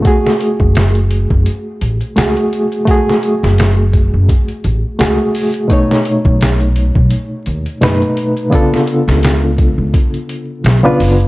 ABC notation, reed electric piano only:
X:1
M:4/4
L:1/16
Q:"Swing 16ths" 1/4=85
K:F#m
V:1 name="Reed electric piano"
[A,FG]12 [A,FG]4 | [A,FG]12 [A,FG]4 | [B,,A,^Dc]12 [B,,A,DB]4 | [C,B,D^EA]12 z [C,B,DEB]3 |]